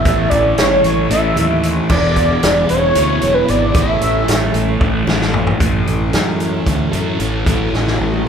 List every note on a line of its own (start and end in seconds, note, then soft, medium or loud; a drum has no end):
0.00 5.57 E4 medium
0.00 0.31 E5 loud
0.05 0.26 A1 medium
0.05 1.10 A2 medium
0.05 1.11 E3 medium
0.05 1.09 A3 medium
0.05 1.88 C#4 medium
0.05 1.88 A4 loud
0.05 kick loud
0.05 closed hi-hat medium
0.05 high conga medium
0.05 low conga medium
0.30 0.52 A1 medium
0.30 0.57 D5 loud
0.30 kick medium
0.30 closed hi-hat medium
0.45 low conga medium
0.58 0.79 A1 medium
0.58 1.07 C#5 loud
0.58 snare loud
0.58 closed hi-hat loud
0.84 1.05 A1 medium
0.84 closed hi-hat medium
0.97 low conga medium
1.10 1.31 A1 medium
1.10 1.90 A2 medium
1.10 1.92 E3 medium
1.10 1.88 A3 medium
1.10 1.66 E5 loud
1.10 closed hi-hat medium
1.36 1.79 D#2 medium
1.36 closed hi-hat medium
1.36 high conga loud
1.36 low conga loud
1.63 closed hi-hat medium
1.89 2.31 E1 medium
1.89 2.94 E2 medium
1.89 2.95 B2 medium
1.89 2.98 E3 medium
1.89 3.74 B3 medium
1.89 3.73 G#4 medium
1.89 2.65 D5 loud
1.89 kick loud
1.89 crash medium
1.89 high conga medium
1.89 low conga medium
2.16 kick medium
2.16 closed hi-hat medium
2.30 low conga medium
2.43 2.64 E1 medium
2.43 snare loud
2.43 closed hi-hat loud
2.56 high conga medium
2.56 low conga soft
2.69 2.90 E1 medium
2.69 3.36 C#5 loud
2.69 closed hi-hat medium
2.83 low conga medium
2.95 3.16 D2 medium
2.95 3.74 E2 medium
2.95 3.74 B2 medium
2.95 3.75 E3 medium
2.95 closed hi-hat loud
3.21 3.44 E1 medium
3.21 closed hi-hat medium
3.21 high conga loud
3.21 low conga loud
3.34 3.51 B4 medium
3.48 3.70 G#1 medium
3.48 3.75 D5 medium
3.48 closed hi-hat medium
3.74 3.96 A1 medium
3.74 4.79 A2 medium
3.74 4.80 E3 medium
3.74 4.79 A3 loud
3.74 5.58 C#4 medium
3.74 5.58 A4 loud
3.74 5.04 E5 loud
3.74 kick loud
3.74 closed hi-hat medium
3.74 high conga medium
3.74 low conga medium
4.01 4.23 A1 medium
4.01 closed hi-hat medium
4.14 low conga medium
4.28 4.49 A1 medium
4.28 snare loud
4.28 closed hi-hat loud
4.41 high conga medium
4.54 4.75 A1 medium
4.54 closed hi-hat medium
4.69 low conga medium
4.80 5.02 A1 medium
4.80 5.58 A2 medium
4.80 5.59 E3 medium
4.80 5.58 A3 medium
4.80 kick loud
4.80 high tom medium
4.96 low conga soft
5.07 5.49 A1 medium
5.07 snare medium
5.07 high conga loud
5.07 low conga loud
5.21 snare medium
5.34 floor tom medium
5.47 floor tom medium
5.60 5.84 A1 medium
5.60 6.91 A2 medium
5.60 6.93 E3 medium
5.60 6.91 A3 medium
5.60 8.28 C#4 medium
5.60 7.45 E4 medium
5.60 8.28 A4 medium
5.60 kick loud
5.60 closed hi-hat medium
5.60 high conga medium
5.60 low conga medium
5.87 6.11 A1 medium
5.87 closed hi-hat medium
6.01 low conga medium
6.13 6.61 F#2 medium
6.13 snare loud
6.13 closed hi-hat medium
6.40 closed hi-hat medium
6.54 high conga medium
6.54 low conga medium
6.67 6.91 D2 medium
6.67 kick loud
6.67 snare soft
6.67 closed hi-hat medium
6.92 7.17 F#2 medium
6.92 7.18 A2 medium
6.92 7.20 E3 medium
6.92 7.18 A3 medium
6.92 closed hi-hat medium
6.92 low conga medium
7.19 7.44 A1 medium
7.19 7.44 A2 medium
7.19 7.46 E3 medium
7.19 7.46 A3 medium
7.19 closed hi-hat medium
7.45 7.70 A1 medium
7.45 8.28 A2 medium
7.45 8.28 E3 medium
7.45 8.28 A3 medium
7.45 8.28 F#4 medium
7.45 kick loud
7.45 closed hi-hat medium
7.45 high conga medium
7.45 low conga medium
7.73 7.97 A1 medium
7.73 snare medium
7.87 snare medium
7.87 low conga medium
8.01 8.24 A1 medium
8.14 high tom soft